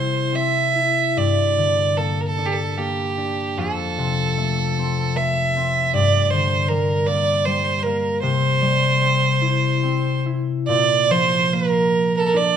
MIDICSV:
0, 0, Header, 1, 3, 480
1, 0, Start_track
1, 0, Tempo, 825309
1, 679, Time_signature, 3, 2, 24, 8
1, 1153, Tempo, 802139
1, 2593, Tempo, 772201
1, 5473, Tempo, 826446
1, 7533, End_track
2, 0, Start_track
2, 0, Title_t, "Fiddle"
2, 0, Program_c, 0, 110
2, 0, Note_on_c, 0, 72, 55
2, 208, Note_on_c, 0, 76, 63
2, 217, Note_off_c, 0, 72, 0
2, 684, Note_on_c, 0, 74, 64
2, 692, Note_off_c, 0, 76, 0
2, 1150, Note_on_c, 0, 69, 54
2, 1159, Note_off_c, 0, 74, 0
2, 1289, Note_on_c, 0, 70, 41
2, 1298, Note_off_c, 0, 69, 0
2, 1322, Note_on_c, 0, 69, 61
2, 1331, Note_off_c, 0, 70, 0
2, 1439, Note_on_c, 0, 67, 41
2, 1448, Note_off_c, 0, 69, 0
2, 1478, Note_on_c, 0, 69, 53
2, 1487, Note_off_c, 0, 67, 0
2, 1593, Note_off_c, 0, 69, 0
2, 1593, Note_on_c, 0, 69, 37
2, 1629, Note_on_c, 0, 67, 54
2, 1638, Note_off_c, 0, 69, 0
2, 2112, Note_on_c, 0, 69, 66
2, 2121, Note_off_c, 0, 67, 0
2, 3075, Note_on_c, 0, 76, 67
2, 3085, Note_off_c, 0, 69, 0
2, 3558, Note_off_c, 0, 76, 0
2, 3567, Note_on_c, 0, 74, 76
2, 3755, Note_off_c, 0, 74, 0
2, 3755, Note_on_c, 0, 74, 49
2, 3790, Note_on_c, 0, 72, 64
2, 3799, Note_off_c, 0, 74, 0
2, 4023, Note_on_c, 0, 70, 61
2, 4033, Note_off_c, 0, 72, 0
2, 4259, Note_on_c, 0, 74, 70
2, 4268, Note_off_c, 0, 70, 0
2, 4500, Note_on_c, 0, 72, 69
2, 4510, Note_off_c, 0, 74, 0
2, 4705, Note_off_c, 0, 72, 0
2, 4705, Note_on_c, 0, 72, 45
2, 4736, Note_on_c, 0, 70, 58
2, 4745, Note_off_c, 0, 72, 0
2, 4977, Note_off_c, 0, 70, 0
2, 4980, Note_on_c, 0, 72, 73
2, 6161, Note_off_c, 0, 72, 0
2, 6438, Note_on_c, 0, 74, 75
2, 6687, Note_on_c, 0, 72, 73
2, 6696, Note_off_c, 0, 74, 0
2, 6934, Note_on_c, 0, 70, 66
2, 6942, Note_off_c, 0, 72, 0
2, 7284, Note_off_c, 0, 70, 0
2, 7300, Note_on_c, 0, 70, 64
2, 7309, Note_on_c, 0, 69, 52
2, 7318, Note_off_c, 0, 70, 0
2, 7356, Note_on_c, 0, 70, 62
2, 7365, Note_off_c, 0, 69, 0
2, 7418, Note_on_c, 0, 74, 73
2, 7427, Note_off_c, 0, 70, 0
2, 7533, Note_off_c, 0, 74, 0
2, 7533, End_track
3, 0, Start_track
3, 0, Title_t, "Harp"
3, 0, Program_c, 1, 46
3, 0, Note_on_c, 1, 48, 47
3, 0, Note_on_c, 1, 55, 39
3, 0, Note_on_c, 1, 60, 34
3, 0, Note_on_c, 1, 64, 31
3, 188, Note_off_c, 1, 60, 0
3, 190, Note_on_c, 1, 60, 35
3, 435, Note_off_c, 1, 64, 0
3, 437, Note_on_c, 1, 64, 32
3, 679, Note_on_c, 1, 43, 47
3, 708, Note_off_c, 1, 48, 0
3, 708, Note_off_c, 1, 55, 0
3, 917, Note_on_c, 1, 50, 36
3, 1152, Note_on_c, 1, 58, 34
3, 1391, Note_on_c, 1, 62, 32
3, 1623, Note_off_c, 1, 58, 0
3, 1625, Note_on_c, 1, 58, 38
3, 1866, Note_off_c, 1, 62, 0
3, 1868, Note_on_c, 1, 62, 35
3, 1958, Note_off_c, 1, 60, 0
3, 1980, Note_off_c, 1, 64, 0
3, 2105, Note_on_c, 1, 41, 51
3, 2144, Note_off_c, 1, 43, 0
3, 2144, Note_off_c, 1, 50, 0
3, 2349, Note_on_c, 1, 48, 43
3, 2587, Note_on_c, 1, 57, 38
3, 2624, Note_off_c, 1, 58, 0
3, 2838, Note_on_c, 1, 60, 40
3, 3065, Note_off_c, 1, 57, 0
3, 3068, Note_on_c, 1, 57, 37
3, 3320, Note_off_c, 1, 60, 0
3, 3322, Note_on_c, 1, 60, 41
3, 3557, Note_on_c, 1, 43, 54
3, 3580, Note_off_c, 1, 62, 0
3, 3594, Note_off_c, 1, 41, 0
3, 3594, Note_off_c, 1, 48, 0
3, 3800, Note_on_c, 1, 50, 42
3, 4031, Note_on_c, 1, 55, 39
3, 4265, Note_on_c, 1, 58, 39
3, 4303, Note_off_c, 1, 57, 0
3, 4500, Note_off_c, 1, 55, 0
3, 4507, Note_on_c, 1, 55, 39
3, 4747, Note_off_c, 1, 58, 0
3, 4750, Note_on_c, 1, 58, 40
3, 4979, Note_on_c, 1, 48, 54
3, 5019, Note_off_c, 1, 43, 0
3, 5019, Note_off_c, 1, 50, 0
3, 5019, Note_off_c, 1, 55, 0
3, 5187, Note_off_c, 1, 60, 0
3, 5219, Note_on_c, 1, 55, 39
3, 5470, Note_on_c, 1, 60, 36
3, 5701, Note_on_c, 1, 64, 35
3, 5940, Note_off_c, 1, 60, 0
3, 5943, Note_on_c, 1, 60, 35
3, 6189, Note_off_c, 1, 64, 0
3, 6192, Note_on_c, 1, 64, 34
3, 6440, Note_on_c, 1, 46, 52
3, 6457, Note_off_c, 1, 48, 0
3, 6457, Note_off_c, 1, 55, 0
3, 6664, Note_off_c, 1, 58, 0
3, 6680, Note_on_c, 1, 53, 41
3, 6714, Note_off_c, 1, 64, 0
3, 6927, Note_on_c, 1, 58, 39
3, 7400, Note_on_c, 1, 62, 46
3, 7533, Note_off_c, 1, 46, 0
3, 7533, Note_off_c, 1, 53, 0
3, 7533, Note_off_c, 1, 58, 0
3, 7533, Note_off_c, 1, 60, 0
3, 7533, Note_off_c, 1, 62, 0
3, 7533, End_track
0, 0, End_of_file